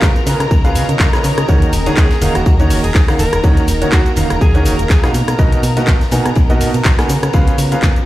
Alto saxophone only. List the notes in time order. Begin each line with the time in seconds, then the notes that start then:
1.86 G#4
2.35 F#4
2.46 F#4
2.84 G#4
2.95 G#4
3.19 A#4
3.92 F#4
4.41 G#4
4.90 G#4
5.04 G#4